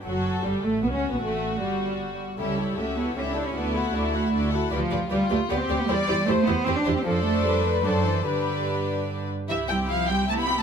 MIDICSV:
0, 0, Header, 1, 6, 480
1, 0, Start_track
1, 0, Key_signature, 2, "major"
1, 0, Tempo, 389864
1, 55, Time_signature, 3, 2, 24, 8
1, 5808, Key_signature, 0, "major"
1, 9173, Tempo, 408441
1, 11573, Tempo, 393185
1, 12955, End_track
2, 0, Start_track
2, 0, Title_t, "Violin section"
2, 0, Program_c, 0, 48
2, 41, Note_on_c, 0, 66, 72
2, 504, Note_off_c, 0, 66, 0
2, 541, Note_on_c, 0, 55, 67
2, 782, Note_on_c, 0, 57, 71
2, 786, Note_off_c, 0, 55, 0
2, 1023, Note_off_c, 0, 57, 0
2, 1023, Note_on_c, 0, 59, 76
2, 1071, Note_off_c, 0, 59, 0
2, 1142, Note_on_c, 0, 61, 71
2, 1375, Note_on_c, 0, 59, 68
2, 1377, Note_off_c, 0, 61, 0
2, 1498, Note_on_c, 0, 57, 75
2, 1499, Note_off_c, 0, 59, 0
2, 1970, Note_off_c, 0, 57, 0
2, 1980, Note_on_c, 0, 55, 67
2, 2683, Note_off_c, 0, 55, 0
2, 2941, Note_on_c, 0, 67, 57
2, 2942, Note_on_c, 0, 76, 57
2, 3165, Note_off_c, 0, 67, 0
2, 3165, Note_off_c, 0, 76, 0
2, 3173, Note_on_c, 0, 69, 52
2, 3177, Note_on_c, 0, 73, 53
2, 3419, Note_off_c, 0, 69, 0
2, 3421, Note_off_c, 0, 73, 0
2, 3423, Note_on_c, 0, 67, 56
2, 3427, Note_on_c, 0, 76, 52
2, 3663, Note_off_c, 0, 67, 0
2, 3665, Note_off_c, 0, 76, 0
2, 3667, Note_on_c, 0, 73, 55
2, 3673, Note_on_c, 0, 69, 54
2, 3904, Note_off_c, 0, 73, 0
2, 3907, Note_off_c, 0, 69, 0
2, 3908, Note_on_c, 0, 67, 56
2, 3910, Note_on_c, 0, 76, 58
2, 4126, Note_off_c, 0, 67, 0
2, 4127, Note_off_c, 0, 76, 0
2, 4137, Note_on_c, 0, 73, 59
2, 4138, Note_on_c, 0, 69, 60
2, 4374, Note_on_c, 0, 74, 61
2, 4376, Note_off_c, 0, 69, 0
2, 4376, Note_off_c, 0, 73, 0
2, 4376, Note_on_c, 0, 66, 60
2, 4596, Note_off_c, 0, 74, 0
2, 4598, Note_off_c, 0, 66, 0
2, 4618, Note_on_c, 0, 78, 55
2, 4619, Note_on_c, 0, 69, 58
2, 4851, Note_on_c, 0, 74, 57
2, 4852, Note_on_c, 0, 66, 64
2, 4854, Note_off_c, 0, 78, 0
2, 4855, Note_off_c, 0, 69, 0
2, 5090, Note_off_c, 0, 74, 0
2, 5091, Note_off_c, 0, 66, 0
2, 5094, Note_on_c, 0, 69, 58
2, 5094, Note_on_c, 0, 78, 57
2, 5326, Note_on_c, 0, 66, 64
2, 5326, Note_on_c, 0, 74, 68
2, 5331, Note_off_c, 0, 69, 0
2, 5331, Note_off_c, 0, 78, 0
2, 5550, Note_off_c, 0, 66, 0
2, 5550, Note_off_c, 0, 74, 0
2, 5556, Note_on_c, 0, 69, 65
2, 5557, Note_on_c, 0, 78, 66
2, 5794, Note_on_c, 0, 71, 70
2, 5800, Note_on_c, 0, 74, 74
2, 5801, Note_off_c, 0, 69, 0
2, 5802, Note_off_c, 0, 78, 0
2, 5892, Note_off_c, 0, 71, 0
2, 5897, Note_off_c, 0, 74, 0
2, 6048, Note_on_c, 0, 74, 68
2, 6049, Note_on_c, 0, 71, 66
2, 6143, Note_off_c, 0, 74, 0
2, 6144, Note_off_c, 0, 71, 0
2, 6282, Note_on_c, 0, 71, 68
2, 6287, Note_on_c, 0, 74, 66
2, 6378, Note_off_c, 0, 71, 0
2, 6383, Note_off_c, 0, 74, 0
2, 6522, Note_on_c, 0, 71, 65
2, 6525, Note_on_c, 0, 74, 63
2, 6619, Note_off_c, 0, 71, 0
2, 6621, Note_off_c, 0, 74, 0
2, 6773, Note_on_c, 0, 74, 72
2, 6775, Note_on_c, 0, 71, 74
2, 6868, Note_off_c, 0, 74, 0
2, 6870, Note_off_c, 0, 71, 0
2, 7007, Note_on_c, 0, 74, 70
2, 7009, Note_on_c, 0, 71, 69
2, 7104, Note_off_c, 0, 74, 0
2, 7105, Note_off_c, 0, 71, 0
2, 7248, Note_on_c, 0, 72, 77
2, 7250, Note_off_c, 0, 72, 0
2, 7250, Note_on_c, 0, 72, 74
2, 7345, Note_off_c, 0, 72, 0
2, 7480, Note_on_c, 0, 72, 68
2, 7485, Note_off_c, 0, 72, 0
2, 7485, Note_on_c, 0, 72, 70
2, 7582, Note_off_c, 0, 72, 0
2, 7721, Note_on_c, 0, 72, 72
2, 7722, Note_off_c, 0, 72, 0
2, 7722, Note_on_c, 0, 72, 71
2, 7820, Note_off_c, 0, 72, 0
2, 7965, Note_on_c, 0, 72, 67
2, 8062, Note_off_c, 0, 72, 0
2, 8203, Note_on_c, 0, 72, 77
2, 8208, Note_off_c, 0, 72, 0
2, 8208, Note_on_c, 0, 72, 74
2, 8304, Note_off_c, 0, 72, 0
2, 8439, Note_on_c, 0, 72, 75
2, 8442, Note_off_c, 0, 72, 0
2, 8442, Note_on_c, 0, 72, 69
2, 8540, Note_off_c, 0, 72, 0
2, 8683, Note_on_c, 0, 72, 79
2, 8684, Note_on_c, 0, 74, 80
2, 9592, Note_off_c, 0, 72, 0
2, 9592, Note_off_c, 0, 74, 0
2, 9635, Note_on_c, 0, 72, 74
2, 9639, Note_on_c, 0, 74, 72
2, 10103, Note_off_c, 0, 74, 0
2, 10108, Note_off_c, 0, 72, 0
2, 10114, Note_on_c, 0, 71, 68
2, 10117, Note_on_c, 0, 74, 70
2, 11309, Note_off_c, 0, 74, 0
2, 11331, Note_off_c, 0, 71, 0
2, 11573, Note_on_c, 0, 64, 59
2, 11578, Note_on_c, 0, 76, 58
2, 11800, Note_off_c, 0, 64, 0
2, 11803, Note_off_c, 0, 76, 0
2, 11823, Note_on_c, 0, 67, 58
2, 11824, Note_on_c, 0, 79, 57
2, 12061, Note_on_c, 0, 76, 57
2, 12062, Note_off_c, 0, 67, 0
2, 12063, Note_off_c, 0, 79, 0
2, 12063, Note_on_c, 0, 64, 59
2, 12299, Note_on_c, 0, 79, 57
2, 12301, Note_off_c, 0, 76, 0
2, 12301, Note_on_c, 0, 67, 56
2, 12302, Note_off_c, 0, 64, 0
2, 12538, Note_off_c, 0, 79, 0
2, 12539, Note_off_c, 0, 67, 0
2, 12541, Note_on_c, 0, 76, 62
2, 12545, Note_on_c, 0, 64, 62
2, 12761, Note_off_c, 0, 76, 0
2, 12764, Note_off_c, 0, 64, 0
2, 12788, Note_on_c, 0, 67, 60
2, 12789, Note_on_c, 0, 79, 58
2, 12955, Note_off_c, 0, 67, 0
2, 12955, Note_off_c, 0, 79, 0
2, 12955, End_track
3, 0, Start_track
3, 0, Title_t, "Violin section"
3, 0, Program_c, 1, 48
3, 41, Note_on_c, 1, 69, 69
3, 970, Note_off_c, 1, 69, 0
3, 1041, Note_on_c, 1, 66, 72
3, 2908, Note_off_c, 1, 66, 0
3, 2954, Note_on_c, 1, 64, 65
3, 3421, Note_off_c, 1, 64, 0
3, 3421, Note_on_c, 1, 66, 65
3, 3891, Note_off_c, 1, 66, 0
3, 3903, Note_on_c, 1, 64, 76
3, 5808, Note_off_c, 1, 64, 0
3, 5825, Note_on_c, 1, 65, 74
3, 6287, Note_off_c, 1, 65, 0
3, 6302, Note_on_c, 1, 65, 82
3, 6764, Note_off_c, 1, 65, 0
3, 6777, Note_on_c, 1, 67, 89
3, 7254, Note_off_c, 1, 67, 0
3, 7257, Note_on_c, 1, 74, 104
3, 7733, Note_off_c, 1, 74, 0
3, 7739, Note_on_c, 1, 72, 85
3, 8215, Note_off_c, 1, 72, 0
3, 8219, Note_on_c, 1, 67, 86
3, 8695, Note_off_c, 1, 67, 0
3, 8698, Note_on_c, 1, 69, 86
3, 9169, Note_off_c, 1, 69, 0
3, 9188, Note_on_c, 1, 71, 82
3, 9649, Note_off_c, 1, 71, 0
3, 9653, Note_on_c, 1, 69, 80
3, 10124, Note_on_c, 1, 71, 72
3, 10127, Note_off_c, 1, 69, 0
3, 11312, Note_off_c, 1, 71, 0
3, 11577, Note_on_c, 1, 76, 86
3, 11674, Note_off_c, 1, 76, 0
3, 11811, Note_on_c, 1, 79, 85
3, 11909, Note_off_c, 1, 79, 0
3, 12060, Note_on_c, 1, 77, 91
3, 12296, Note_off_c, 1, 77, 0
3, 12302, Note_on_c, 1, 79, 91
3, 12540, Note_off_c, 1, 79, 0
3, 12546, Note_on_c, 1, 81, 100
3, 12592, Note_off_c, 1, 81, 0
3, 12678, Note_on_c, 1, 83, 92
3, 12901, Note_off_c, 1, 83, 0
3, 12955, End_track
4, 0, Start_track
4, 0, Title_t, "Viola section"
4, 0, Program_c, 2, 48
4, 36, Note_on_c, 2, 54, 69
4, 501, Note_off_c, 2, 54, 0
4, 532, Note_on_c, 2, 55, 74
4, 776, Note_off_c, 2, 55, 0
4, 781, Note_on_c, 2, 57, 71
4, 1010, Note_on_c, 2, 59, 73
4, 1023, Note_off_c, 2, 57, 0
4, 1061, Note_off_c, 2, 59, 0
4, 1115, Note_on_c, 2, 61, 72
4, 1358, Note_on_c, 2, 59, 66
4, 1363, Note_off_c, 2, 61, 0
4, 1479, Note_on_c, 2, 57, 73
4, 1488, Note_off_c, 2, 59, 0
4, 1960, Note_off_c, 2, 57, 0
4, 1965, Note_on_c, 2, 55, 68
4, 2676, Note_off_c, 2, 55, 0
4, 2924, Note_on_c, 2, 69, 59
4, 2929, Note_on_c, 2, 61, 57
4, 3156, Note_off_c, 2, 69, 0
4, 3158, Note_off_c, 2, 61, 0
4, 3170, Note_on_c, 2, 67, 51
4, 3177, Note_on_c, 2, 64, 51
4, 3413, Note_on_c, 2, 69, 56
4, 3414, Note_on_c, 2, 61, 57
4, 3418, Note_off_c, 2, 67, 0
4, 3421, Note_off_c, 2, 64, 0
4, 3656, Note_on_c, 2, 64, 51
4, 3658, Note_off_c, 2, 69, 0
4, 3659, Note_off_c, 2, 61, 0
4, 3659, Note_on_c, 2, 67, 55
4, 3896, Note_on_c, 2, 69, 52
4, 3898, Note_off_c, 2, 64, 0
4, 3898, Note_on_c, 2, 61, 56
4, 3900, Note_off_c, 2, 67, 0
4, 4120, Note_off_c, 2, 69, 0
4, 4121, Note_off_c, 2, 61, 0
4, 4138, Note_on_c, 2, 67, 54
4, 4141, Note_on_c, 2, 64, 56
4, 4376, Note_off_c, 2, 67, 0
4, 4378, Note_off_c, 2, 64, 0
4, 4382, Note_on_c, 2, 69, 63
4, 4387, Note_on_c, 2, 62, 58
4, 4601, Note_off_c, 2, 69, 0
4, 4603, Note_off_c, 2, 62, 0
4, 4615, Note_on_c, 2, 66, 54
4, 4853, Note_off_c, 2, 66, 0
4, 4860, Note_on_c, 2, 62, 64
4, 4865, Note_on_c, 2, 69, 60
4, 5092, Note_on_c, 2, 66, 59
4, 5094, Note_off_c, 2, 62, 0
4, 5097, Note_off_c, 2, 69, 0
4, 5101, Note_off_c, 2, 66, 0
4, 5101, Note_on_c, 2, 66, 56
4, 5335, Note_off_c, 2, 66, 0
4, 5340, Note_on_c, 2, 62, 60
4, 5344, Note_on_c, 2, 69, 62
4, 5557, Note_off_c, 2, 62, 0
4, 5559, Note_off_c, 2, 69, 0
4, 5583, Note_on_c, 2, 66, 63
4, 5591, Note_off_c, 2, 66, 0
4, 5591, Note_on_c, 2, 66, 64
4, 5807, Note_on_c, 2, 67, 70
4, 5808, Note_off_c, 2, 67, 0
4, 5808, Note_on_c, 2, 67, 71
4, 5819, Note_off_c, 2, 66, 0
4, 5903, Note_off_c, 2, 67, 0
4, 6052, Note_on_c, 2, 67, 62
4, 6053, Note_off_c, 2, 67, 0
4, 6053, Note_on_c, 2, 67, 60
4, 6147, Note_off_c, 2, 67, 0
4, 6287, Note_on_c, 2, 67, 71
4, 6289, Note_off_c, 2, 67, 0
4, 6289, Note_on_c, 2, 67, 65
4, 6384, Note_off_c, 2, 67, 0
4, 6527, Note_on_c, 2, 67, 64
4, 6528, Note_off_c, 2, 67, 0
4, 6528, Note_on_c, 2, 67, 70
4, 6623, Note_off_c, 2, 67, 0
4, 6763, Note_on_c, 2, 67, 70
4, 6860, Note_off_c, 2, 67, 0
4, 7011, Note_on_c, 2, 67, 64
4, 7015, Note_off_c, 2, 67, 0
4, 7015, Note_on_c, 2, 67, 68
4, 7110, Note_off_c, 2, 67, 0
4, 7256, Note_on_c, 2, 64, 73
4, 7261, Note_on_c, 2, 67, 78
4, 7351, Note_off_c, 2, 64, 0
4, 7355, Note_off_c, 2, 67, 0
4, 7488, Note_on_c, 2, 67, 68
4, 7489, Note_on_c, 2, 64, 64
4, 7584, Note_off_c, 2, 67, 0
4, 7585, Note_off_c, 2, 64, 0
4, 7730, Note_on_c, 2, 64, 70
4, 7733, Note_on_c, 2, 67, 72
4, 7826, Note_off_c, 2, 64, 0
4, 7828, Note_off_c, 2, 67, 0
4, 7968, Note_on_c, 2, 64, 69
4, 7971, Note_on_c, 2, 67, 71
4, 8064, Note_off_c, 2, 64, 0
4, 8067, Note_off_c, 2, 67, 0
4, 8201, Note_on_c, 2, 64, 72
4, 8205, Note_on_c, 2, 67, 67
4, 8299, Note_off_c, 2, 64, 0
4, 8302, Note_off_c, 2, 67, 0
4, 8449, Note_on_c, 2, 67, 69
4, 8453, Note_on_c, 2, 64, 67
4, 8545, Note_off_c, 2, 67, 0
4, 8548, Note_off_c, 2, 64, 0
4, 8685, Note_on_c, 2, 62, 81
4, 8690, Note_on_c, 2, 69, 82
4, 9593, Note_off_c, 2, 62, 0
4, 9595, Note_off_c, 2, 69, 0
4, 9627, Note_on_c, 2, 62, 65
4, 9630, Note_on_c, 2, 69, 67
4, 10092, Note_off_c, 2, 62, 0
4, 10106, Note_off_c, 2, 69, 0
4, 10107, Note_on_c, 2, 62, 65
4, 10107, Note_on_c, 2, 67, 67
4, 11303, Note_off_c, 2, 62, 0
4, 11328, Note_off_c, 2, 67, 0
4, 11563, Note_on_c, 2, 67, 62
4, 11564, Note_on_c, 2, 64, 60
4, 11795, Note_off_c, 2, 67, 0
4, 11796, Note_off_c, 2, 64, 0
4, 11808, Note_on_c, 2, 60, 53
4, 11808, Note_on_c, 2, 64, 53
4, 12034, Note_off_c, 2, 64, 0
4, 12048, Note_on_c, 2, 64, 57
4, 12053, Note_on_c, 2, 67, 60
4, 12055, Note_off_c, 2, 60, 0
4, 12279, Note_off_c, 2, 64, 0
4, 12293, Note_on_c, 2, 64, 56
4, 12297, Note_off_c, 2, 67, 0
4, 12297, Note_on_c, 2, 60, 57
4, 12523, Note_off_c, 2, 64, 0
4, 12537, Note_off_c, 2, 60, 0
4, 12538, Note_on_c, 2, 64, 59
4, 12541, Note_on_c, 2, 67, 55
4, 12752, Note_off_c, 2, 64, 0
4, 12761, Note_off_c, 2, 67, 0
4, 12764, Note_on_c, 2, 60, 58
4, 12766, Note_on_c, 2, 64, 54
4, 12955, Note_off_c, 2, 60, 0
4, 12955, Note_off_c, 2, 64, 0
4, 12955, End_track
5, 0, Start_track
5, 0, Title_t, "Cello section"
5, 0, Program_c, 3, 48
5, 49, Note_on_c, 3, 54, 77
5, 508, Note_off_c, 3, 54, 0
5, 532, Note_on_c, 3, 55, 73
5, 630, Note_off_c, 3, 55, 0
5, 779, Note_on_c, 3, 57, 77
5, 1017, Note_off_c, 3, 57, 0
5, 1027, Note_on_c, 3, 59, 77
5, 1146, Note_off_c, 3, 59, 0
5, 1154, Note_on_c, 3, 61, 77
5, 1248, Note_off_c, 3, 61, 0
5, 1395, Note_on_c, 3, 59, 69
5, 1500, Note_on_c, 3, 57, 84
5, 1507, Note_off_c, 3, 59, 0
5, 1971, Note_off_c, 3, 57, 0
5, 1984, Note_on_c, 3, 55, 74
5, 2699, Note_off_c, 3, 55, 0
5, 2939, Note_on_c, 3, 55, 82
5, 3389, Note_off_c, 3, 55, 0
5, 3419, Note_on_c, 3, 57, 84
5, 3516, Note_off_c, 3, 57, 0
5, 3651, Note_on_c, 3, 59, 79
5, 3891, Note_off_c, 3, 59, 0
5, 3899, Note_on_c, 3, 61, 86
5, 3947, Note_off_c, 3, 61, 0
5, 4026, Note_on_c, 3, 62, 79
5, 4256, Note_off_c, 3, 62, 0
5, 4261, Note_on_c, 3, 61, 77
5, 4367, Note_on_c, 3, 59, 87
5, 4378, Note_off_c, 3, 61, 0
5, 4848, Note_off_c, 3, 59, 0
5, 4849, Note_on_c, 3, 57, 85
5, 5552, Note_off_c, 3, 57, 0
5, 5807, Note_on_c, 3, 53, 100
5, 6251, Note_off_c, 3, 53, 0
5, 6291, Note_on_c, 3, 55, 107
5, 6523, Note_off_c, 3, 55, 0
5, 6529, Note_on_c, 3, 57, 103
5, 6625, Note_off_c, 3, 57, 0
5, 6766, Note_on_c, 3, 59, 99
5, 6884, Note_off_c, 3, 59, 0
5, 6895, Note_on_c, 3, 60, 100
5, 7133, Note_off_c, 3, 60, 0
5, 7146, Note_on_c, 3, 59, 94
5, 7252, Note_on_c, 3, 55, 112
5, 7257, Note_off_c, 3, 59, 0
5, 7716, Note_on_c, 3, 57, 111
5, 7730, Note_off_c, 3, 55, 0
5, 7958, Note_on_c, 3, 59, 112
5, 7963, Note_off_c, 3, 57, 0
5, 8190, Note_on_c, 3, 60, 111
5, 8205, Note_off_c, 3, 59, 0
5, 8320, Note_off_c, 3, 60, 0
5, 8335, Note_on_c, 3, 62, 101
5, 8570, Note_on_c, 3, 60, 93
5, 8573, Note_off_c, 3, 62, 0
5, 8682, Note_on_c, 3, 53, 105
5, 8688, Note_off_c, 3, 60, 0
5, 8921, Note_on_c, 3, 57, 101
5, 8923, Note_off_c, 3, 53, 0
5, 9164, Note_off_c, 3, 57, 0
5, 9166, Note_on_c, 3, 55, 99
5, 9403, Note_off_c, 3, 55, 0
5, 9407, Note_on_c, 3, 57, 91
5, 9633, Note_on_c, 3, 54, 91
5, 9637, Note_off_c, 3, 57, 0
5, 9875, Note_off_c, 3, 54, 0
5, 9875, Note_on_c, 3, 52, 86
5, 10119, Note_off_c, 3, 52, 0
5, 10126, Note_on_c, 3, 50, 78
5, 11313, Note_off_c, 3, 50, 0
5, 11577, Note_on_c, 3, 52, 74
5, 11674, Note_off_c, 3, 52, 0
5, 11825, Note_on_c, 3, 55, 73
5, 11921, Note_off_c, 3, 55, 0
5, 12066, Note_on_c, 3, 53, 76
5, 12299, Note_off_c, 3, 53, 0
5, 12300, Note_on_c, 3, 55, 75
5, 12539, Note_off_c, 3, 55, 0
5, 12542, Note_on_c, 3, 57, 79
5, 12655, Note_on_c, 3, 59, 81
5, 12657, Note_off_c, 3, 57, 0
5, 12893, Note_on_c, 3, 57, 71
5, 12894, Note_off_c, 3, 59, 0
5, 12955, Note_off_c, 3, 57, 0
5, 12955, End_track
6, 0, Start_track
6, 0, Title_t, "Double bass section"
6, 0, Program_c, 4, 48
6, 51, Note_on_c, 4, 30, 68
6, 509, Note_off_c, 4, 30, 0
6, 548, Note_on_c, 4, 31, 68
6, 645, Note_off_c, 4, 31, 0
6, 785, Note_on_c, 4, 33, 67
6, 1020, Note_off_c, 4, 33, 0
6, 1023, Note_on_c, 4, 35, 71
6, 1137, Note_on_c, 4, 37, 67
6, 1144, Note_off_c, 4, 35, 0
6, 1371, Note_on_c, 4, 35, 67
6, 1379, Note_off_c, 4, 37, 0
6, 1495, Note_off_c, 4, 35, 0
6, 1497, Note_on_c, 4, 33, 70
6, 1969, Note_off_c, 4, 33, 0
6, 1975, Note_on_c, 4, 31, 64
6, 2695, Note_off_c, 4, 31, 0
6, 2930, Note_on_c, 4, 37, 69
6, 3361, Note_off_c, 4, 37, 0
6, 3428, Note_on_c, 4, 37, 64
6, 3848, Note_off_c, 4, 37, 0
6, 3899, Note_on_c, 4, 37, 67
6, 4319, Note_off_c, 4, 37, 0
6, 4378, Note_on_c, 4, 38, 77
6, 4797, Note_off_c, 4, 38, 0
6, 4858, Note_on_c, 4, 38, 73
6, 5276, Note_off_c, 4, 38, 0
6, 5335, Note_on_c, 4, 38, 74
6, 5754, Note_off_c, 4, 38, 0
6, 5811, Note_on_c, 4, 38, 76
6, 5906, Note_off_c, 4, 38, 0
6, 6052, Note_on_c, 4, 38, 71
6, 6147, Note_off_c, 4, 38, 0
6, 6287, Note_on_c, 4, 38, 74
6, 6382, Note_off_c, 4, 38, 0
6, 6525, Note_on_c, 4, 38, 75
6, 6621, Note_off_c, 4, 38, 0
6, 6767, Note_on_c, 4, 38, 76
6, 6863, Note_off_c, 4, 38, 0
6, 7006, Note_on_c, 4, 38, 80
6, 7103, Note_off_c, 4, 38, 0
6, 7248, Note_on_c, 4, 40, 81
6, 7344, Note_off_c, 4, 40, 0
6, 7493, Note_on_c, 4, 40, 76
6, 7588, Note_off_c, 4, 40, 0
6, 7738, Note_on_c, 4, 40, 80
6, 7832, Note_off_c, 4, 40, 0
6, 7978, Note_on_c, 4, 40, 80
6, 8072, Note_off_c, 4, 40, 0
6, 8214, Note_on_c, 4, 40, 83
6, 8309, Note_off_c, 4, 40, 0
6, 8451, Note_on_c, 4, 40, 81
6, 8547, Note_off_c, 4, 40, 0
6, 8687, Note_on_c, 4, 41, 80
6, 9594, Note_off_c, 4, 41, 0
6, 9638, Note_on_c, 4, 42, 72
6, 10116, Note_on_c, 4, 43, 67
6, 10119, Note_off_c, 4, 42, 0
6, 11308, Note_off_c, 4, 43, 0
6, 11581, Note_on_c, 4, 36, 68
6, 12955, Note_off_c, 4, 36, 0
6, 12955, End_track
0, 0, End_of_file